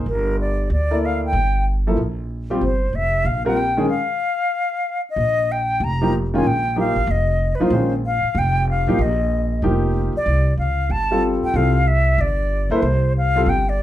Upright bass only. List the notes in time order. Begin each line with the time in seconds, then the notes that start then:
0.06 G1
0.70 D2
1.33 G1
1.97 A#1
2.61 G1
2.93 F1
3.25 A#1
5.16 A#1
5.80 F1
6.44 A#1
6.96 A1
7.07 F1
7.60 muted upright bass stroke
7.70 A#1
8.23 muted upright bass stroke
8.35 F1
8.87 A1
8.98 A#1
9.62 F1
10.14 muted upright bass stroke
10.26 C2
10.57 C#2
10.89 G1
11.43 muted upright bass stroke
11.54 C2
12.18 G1
12.70 G2
12.82 C2
13.46 G1